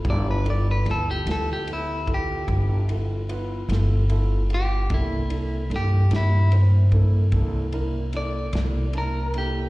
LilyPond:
<<
  \new Staff \with { instrumentName = "Clean electric guitar" } { \time 12/8 \key c \major \tempo 4. = 49 d''16 b'16 d''16 b'16 a'16 g'16 a'16 g'16 e'8 g'4 r2 g'8 | e'4 g'8 e'8 r2 d''4 bes'8 g'8 | }
  \new Staff \with { instrumentName = "Grand piano" } { \time 12/8 \key c \major <b e' f' g'>8 <b e' f' a'>8 <b e' f' a'>8 <b e' f' a'>8 <b e' g' a'>8 <b e' f' a'>8 <b e' f' a'>8 <b e' f' a'>8 <b e' f' b'>8 <b e' f' a'>8 <b e' f' a'>8 <b e' f' g'>8 | <bes d' e' a'>8 <bes d' e' a'>8 <bes d' e' a'>8 <bes d' e' g'>8 <bes d' e' c''>8 <bes d' e' a'>8 <bes d' e' a'>8 <bes d' e' bes'>8 <bes d' e' a'>8 <bes d' e' a'>8 <bes d' e' a''>8 <bes d' e' a'>8 | }
  \new Staff \with { instrumentName = "Upright bass" } { \clef bass \time 12/8 \key c \major g,,4 d,8 d,4. g,,4. g,,4. | c,4 g,8 g,4. c,4. c,4. | }
  \new DrumStaff \with { instrumentName = "Drums" } \drummode { \time 12/8 <bd cymr>8 cymr8 <cymr sn>8 <cymr sn>8 cymr8 <bd cymr>8 <bd cymr>8 cymr8 cymr8 <cymr sn>8 cymr8 cymr8 | <bd cymr>8 cymr8 cymr8 <cymr sn>8 cymr8 <bd cymr>8 <bd cymr>8 cymr8 cymr8 <cymr sn>8 cymr8 cymr8 | }
>>